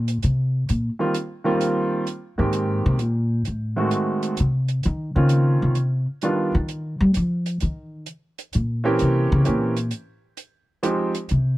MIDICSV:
0, 0, Header, 1, 4, 480
1, 0, Start_track
1, 0, Key_signature, -4, "major"
1, 0, Tempo, 461538
1, 713, Time_signature, 3, 2, 24, 8
1, 12042, End_track
2, 0, Start_track
2, 0, Title_t, "Grand piano"
2, 0, Program_c, 0, 0
2, 1032, Note_on_c, 0, 55, 53
2, 1033, Note_on_c, 0, 51, 58
2, 1037, Note_on_c, 0, 58, 53
2, 1044, Note_on_c, 0, 60, 51
2, 1048, Note_on_c, 0, 65, 65
2, 1173, Note_off_c, 0, 55, 0
2, 1174, Note_off_c, 0, 51, 0
2, 1176, Note_off_c, 0, 58, 0
2, 1179, Note_off_c, 0, 60, 0
2, 1181, Note_off_c, 0, 65, 0
2, 1501, Note_on_c, 0, 51, 69
2, 1510, Note_on_c, 0, 55, 65
2, 1511, Note_on_c, 0, 58, 63
2, 1515, Note_on_c, 0, 60, 67
2, 1520, Note_on_c, 0, 65, 79
2, 2112, Note_off_c, 0, 51, 0
2, 2116, Note_off_c, 0, 55, 0
2, 2117, Note_off_c, 0, 58, 0
2, 2119, Note_off_c, 0, 60, 0
2, 2121, Note_off_c, 0, 65, 0
2, 2474, Note_on_c, 0, 51, 59
2, 2476, Note_on_c, 0, 56, 51
2, 2485, Note_on_c, 0, 58, 50
2, 2486, Note_on_c, 0, 60, 52
2, 2492, Note_on_c, 0, 67, 66
2, 3078, Note_off_c, 0, 51, 0
2, 3079, Note_off_c, 0, 56, 0
2, 3084, Note_off_c, 0, 58, 0
2, 3085, Note_off_c, 0, 60, 0
2, 3088, Note_off_c, 0, 67, 0
2, 3913, Note_on_c, 0, 51, 57
2, 3916, Note_on_c, 0, 57, 54
2, 3917, Note_on_c, 0, 56, 56
2, 3925, Note_on_c, 0, 60, 57
2, 3930, Note_on_c, 0, 66, 65
2, 4518, Note_off_c, 0, 51, 0
2, 4520, Note_off_c, 0, 56, 0
2, 4520, Note_off_c, 0, 57, 0
2, 4524, Note_off_c, 0, 60, 0
2, 4527, Note_off_c, 0, 66, 0
2, 5362, Note_on_c, 0, 51, 56
2, 5363, Note_on_c, 0, 58, 54
2, 5367, Note_on_c, 0, 60, 52
2, 5374, Note_on_c, 0, 61, 50
2, 5377, Note_on_c, 0, 65, 65
2, 5963, Note_off_c, 0, 51, 0
2, 5964, Note_off_c, 0, 58, 0
2, 5965, Note_off_c, 0, 60, 0
2, 5969, Note_off_c, 0, 61, 0
2, 5971, Note_off_c, 0, 65, 0
2, 6477, Note_on_c, 0, 55, 52
2, 6478, Note_on_c, 0, 51, 57
2, 6484, Note_on_c, 0, 62, 54
2, 6487, Note_on_c, 0, 59, 53
2, 6492, Note_on_c, 0, 65, 66
2, 6770, Note_off_c, 0, 55, 0
2, 6771, Note_off_c, 0, 51, 0
2, 6773, Note_off_c, 0, 62, 0
2, 6775, Note_off_c, 0, 59, 0
2, 6778, Note_off_c, 0, 65, 0
2, 9192, Note_on_c, 0, 52, 76
2, 9200, Note_on_c, 0, 58, 68
2, 9203, Note_on_c, 0, 60, 66
2, 9205, Note_on_c, 0, 61, 68
2, 9209, Note_on_c, 0, 67, 85
2, 9798, Note_off_c, 0, 52, 0
2, 9801, Note_off_c, 0, 58, 0
2, 9803, Note_off_c, 0, 60, 0
2, 9804, Note_off_c, 0, 61, 0
2, 9806, Note_off_c, 0, 67, 0
2, 9825, Note_on_c, 0, 52, 58
2, 9828, Note_on_c, 0, 58, 53
2, 9835, Note_on_c, 0, 60, 51
2, 9838, Note_on_c, 0, 61, 57
2, 9841, Note_on_c, 0, 67, 64
2, 10123, Note_off_c, 0, 52, 0
2, 10125, Note_off_c, 0, 58, 0
2, 10129, Note_off_c, 0, 60, 0
2, 10130, Note_off_c, 0, 61, 0
2, 10132, Note_off_c, 0, 67, 0
2, 11260, Note_on_c, 0, 53, 65
2, 11263, Note_on_c, 0, 56, 56
2, 11263, Note_on_c, 0, 60, 59
2, 11269, Note_on_c, 0, 63, 57
2, 11272, Note_on_c, 0, 67, 68
2, 11561, Note_off_c, 0, 53, 0
2, 11562, Note_off_c, 0, 56, 0
2, 11562, Note_off_c, 0, 60, 0
2, 11565, Note_off_c, 0, 63, 0
2, 11567, Note_off_c, 0, 67, 0
2, 12042, End_track
3, 0, Start_track
3, 0, Title_t, "Upright bass"
3, 0, Program_c, 1, 32
3, 0, Note_on_c, 1, 46, 90
3, 192, Note_off_c, 1, 46, 0
3, 248, Note_on_c, 1, 48, 91
3, 687, Note_off_c, 1, 48, 0
3, 725, Note_on_c, 1, 46, 81
3, 918, Note_off_c, 1, 46, 0
3, 2483, Note_on_c, 1, 44, 77
3, 2928, Note_off_c, 1, 44, 0
3, 2972, Note_on_c, 1, 48, 107
3, 3130, Note_off_c, 1, 48, 0
3, 3130, Note_on_c, 1, 46, 69
3, 3601, Note_off_c, 1, 46, 0
3, 3614, Note_on_c, 1, 45, 64
3, 4050, Note_off_c, 1, 45, 0
3, 4576, Note_on_c, 1, 48, 80
3, 5011, Note_off_c, 1, 48, 0
3, 5049, Note_on_c, 1, 51, 92
3, 5359, Note_off_c, 1, 51, 0
3, 5364, Note_on_c, 1, 49, 90
3, 5809, Note_off_c, 1, 49, 0
3, 5847, Note_on_c, 1, 48, 94
3, 6291, Note_off_c, 1, 48, 0
3, 6807, Note_on_c, 1, 51, 101
3, 7251, Note_off_c, 1, 51, 0
3, 7285, Note_on_c, 1, 55, 106
3, 7430, Note_off_c, 1, 55, 0
3, 7453, Note_on_c, 1, 53, 88
3, 7890, Note_off_c, 1, 53, 0
3, 7928, Note_on_c, 1, 51, 75
3, 8367, Note_off_c, 1, 51, 0
3, 8893, Note_on_c, 1, 46, 76
3, 9330, Note_off_c, 1, 46, 0
3, 9376, Note_on_c, 1, 48, 82
3, 9683, Note_off_c, 1, 48, 0
3, 9693, Note_on_c, 1, 49, 111
3, 9834, Note_off_c, 1, 49, 0
3, 9860, Note_on_c, 1, 46, 84
3, 10293, Note_off_c, 1, 46, 0
3, 11764, Note_on_c, 1, 48, 86
3, 12042, Note_off_c, 1, 48, 0
3, 12042, End_track
4, 0, Start_track
4, 0, Title_t, "Drums"
4, 80, Note_on_c, 9, 42, 46
4, 184, Note_off_c, 9, 42, 0
4, 234, Note_on_c, 9, 42, 44
4, 338, Note_off_c, 9, 42, 0
4, 714, Note_on_c, 9, 42, 43
4, 818, Note_off_c, 9, 42, 0
4, 1188, Note_on_c, 9, 42, 51
4, 1292, Note_off_c, 9, 42, 0
4, 1670, Note_on_c, 9, 42, 50
4, 1774, Note_off_c, 9, 42, 0
4, 2148, Note_on_c, 9, 42, 42
4, 2252, Note_off_c, 9, 42, 0
4, 2627, Note_on_c, 9, 42, 47
4, 2731, Note_off_c, 9, 42, 0
4, 3107, Note_on_c, 9, 42, 39
4, 3211, Note_off_c, 9, 42, 0
4, 3587, Note_on_c, 9, 42, 41
4, 3691, Note_off_c, 9, 42, 0
4, 4065, Note_on_c, 9, 42, 47
4, 4169, Note_off_c, 9, 42, 0
4, 4394, Note_on_c, 9, 42, 43
4, 4498, Note_off_c, 9, 42, 0
4, 4544, Note_on_c, 9, 42, 53
4, 4648, Note_off_c, 9, 42, 0
4, 4870, Note_on_c, 9, 42, 44
4, 4974, Note_off_c, 9, 42, 0
4, 5025, Note_on_c, 9, 42, 41
4, 5129, Note_off_c, 9, 42, 0
4, 5501, Note_on_c, 9, 42, 53
4, 5605, Note_off_c, 9, 42, 0
4, 5979, Note_on_c, 9, 42, 44
4, 6083, Note_off_c, 9, 42, 0
4, 6463, Note_on_c, 9, 42, 42
4, 6567, Note_off_c, 9, 42, 0
4, 6951, Note_on_c, 9, 42, 41
4, 7055, Note_off_c, 9, 42, 0
4, 7426, Note_on_c, 9, 42, 51
4, 7530, Note_off_c, 9, 42, 0
4, 7756, Note_on_c, 9, 42, 45
4, 7860, Note_off_c, 9, 42, 0
4, 7907, Note_on_c, 9, 42, 42
4, 8011, Note_off_c, 9, 42, 0
4, 8383, Note_on_c, 9, 42, 47
4, 8487, Note_off_c, 9, 42, 0
4, 8719, Note_on_c, 9, 42, 46
4, 8823, Note_off_c, 9, 42, 0
4, 8868, Note_on_c, 9, 42, 45
4, 8972, Note_off_c, 9, 42, 0
4, 9348, Note_on_c, 9, 42, 42
4, 9452, Note_off_c, 9, 42, 0
4, 9827, Note_on_c, 9, 42, 52
4, 9931, Note_off_c, 9, 42, 0
4, 10154, Note_on_c, 9, 42, 49
4, 10258, Note_off_c, 9, 42, 0
4, 10303, Note_on_c, 9, 42, 44
4, 10407, Note_off_c, 9, 42, 0
4, 10784, Note_on_c, 9, 42, 43
4, 10888, Note_off_c, 9, 42, 0
4, 11264, Note_on_c, 9, 42, 55
4, 11368, Note_off_c, 9, 42, 0
4, 11590, Note_on_c, 9, 42, 49
4, 11694, Note_off_c, 9, 42, 0
4, 11739, Note_on_c, 9, 42, 45
4, 11843, Note_off_c, 9, 42, 0
4, 12042, End_track
0, 0, End_of_file